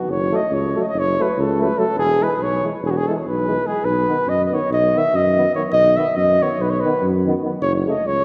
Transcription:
Already playing: F#4
0.08 F#1 C#5
0.31 F#3 A3
0.36 D#5
0.51 C#2 C#5
0.75 F#3 A3
0.82 D#5
0.88 D#5
0.94 F#1
0.99 C#5
1.19 F#3 A3 B4
1.38 C#2 A4
1.59 F#3 A3 B4
1.78 F#3 A3 A4
1.95 E1 G#4
2.20 E3 G#3 B4
2.38 B1
2.43 C#5
2.63 E3 G#3
2.82 E1
2.86 G#4
2.90 F#4
2.97 G#4
3.07 E3 G#3 A4
3.17 C#5
3.26 B1 B4
3.47 E3 G#3
3.65 E3 G#3 G#4
3.84 B1 B4
4.08 D#3 B3
4.27 F#2 D#5
4.44 D#5
4.52 D#3 B3 C#5
4.70 B1 D#5
4.94 D#3 B3 E5
5.14 F#2 D#5
5.37 D#3 B3
5.55 D#3 B3 C#5
5.72 B1 D#5
5.96 D#3 B3 E5
6.16 F#2 D#5
6.41 D#3 B3 C#5
6.59 B1 B4
6.70 C#5
6.80 B4
6.84 D#3 B3
7.03 F#2
7.25 D#3 B3
7.42 D#3 B3
7.61 F#1 C#5
7.85 C#3 A3 D#5
8.06 C#2 C#5

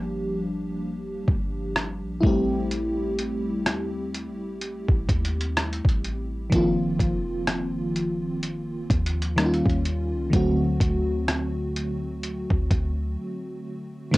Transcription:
Already playing: G1 F3 G3 A#3 D4 G4
1.28 G1, kick
1.76 cross-stick
2.04 A#1
2.21 A1 G3 A3 E4, kick
2.25 C4 G4
2.71 closed hi-hat
3.19 closed hi-hat
3.66 D#2, cross-stick, closed hi-hat
4.14 closed hi-hat
4.28 A1
4.61 closed hi-hat
4.89 A1, kick
5.09 D#2, kick, closed hi-hat
5.25 closed hi-hat
5.41 closed hi-hat
5.57 cross-stick, closed hi-hat
5.73 closed hi-hat
5.85 A1, kick, closed hi-hat
6.04 closed hi-hat
6.50 F1 D#3 F3 A#3, kick, closed hi-hat
6.54 C4 F4
6.99 F1, kick, closed hi-hat
7.47 cross-stick, closed hi-hat
7.96 closed hi-hat
8.43 closed hi-hat
8.90 D#2, kick, closed hi-hat
9.06 closed hi-hat
9.22 closed hi-hat
9.36 D#3 G3 A#3 C#4 D#4, cross-stick, closed hi-hat
9.46 F4
9.54 closed hi-hat
9.66 D#2, kick, closed hi-hat
9.85 closed hi-hat
10.13 C#2
10.30 D2 D3 F#3 A3, kick, closed hi-hat
10.34 C4 F#4
10.80 D2, kick, closed hi-hat
11.28 cross-stick, closed hi-hat
11.76 closed hi-hat
12.23 closed hi-hat
12.50 D2, kick
12.71 D2, kick, closed hi-hat
14.11 D2 D#3 A3 C4, kick, closed hi-hat, crash

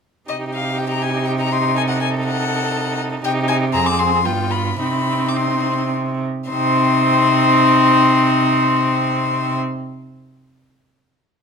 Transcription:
0.29 C3 D#4 G4 D#5
0.54 F5
0.78 G5
0.90 A#5
1.02 G#5
1.26 G5
1.40 A#5
1.52 C6
1.77 A4 G#5
1.89 F#5
2.01 G#5
2.26 F#5
3.24 C3 D#4 G4 G5
3.48 G#5
3.73 F2 C4 G#4 A#5
3.86 D6
3.99 C6
4.25 G2 B3 F4 G5
4.51 B5
4.79 C3 C4 D#4 B5
5.28 D6
5.36 C6
6.50 C3 C4 D#4 C6

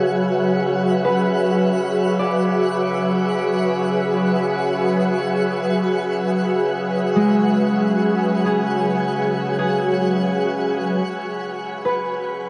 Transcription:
Already playing: C#3 F#3 F#4 G#4 B4 E5 F#5
1.05 B4
2.19 D5
7.16 G#3
8.45 G#4
9.59 G#4
11.08 C#3 F#3
11.85 B4

